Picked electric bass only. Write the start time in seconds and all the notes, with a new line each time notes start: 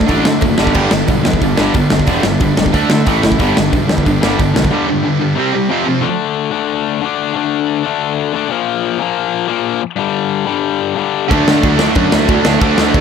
0.10 A1
0.26 D3
0.42 F#1
0.59 G1
0.75 G1
0.92 G1
1.09 B1
1.26 E2
1.42 G1
1.58 G1
1.75 G1
1.92 G1
2.07 E1
2.25 G1
2.41 G1
2.58 G1
2.74 D2
2.91 D3
3.07 A1
3.24 F#1
3.40 G1
3.58 G1
3.73 B1
3.90 E2
4.07 G1
4.23 G1
4.40 G1
4.56 B1
11.31 D2
11.47 D3
11.64 D2
11.96 F#2
12.14 D2
12.29 D2
12.46 D2
12.61 D2
12.78 D2
12.94 D2